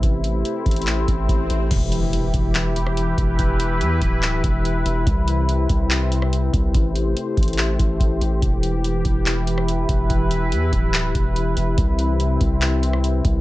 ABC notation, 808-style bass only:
X:1
M:4/4
L:1/8
Q:1/4=143
K:Em
V:1 name="808-style bass" clef=bass
A,,,2 z A,,,2 A,,, A,,, A,,, | E,,,3 E,,,4 E,,, | E,,,2 E,, D,,,2 E,,,2 E,,, | C,,3 C,,4 C,, |
A,,,2 z A,,,2 A,,, A,,, A,,, | E,,,3 E,,,4 E,,, | E,,,2 E,, D,,,2 E,,,2 E,,, | C,,3 C,,4 C,, |]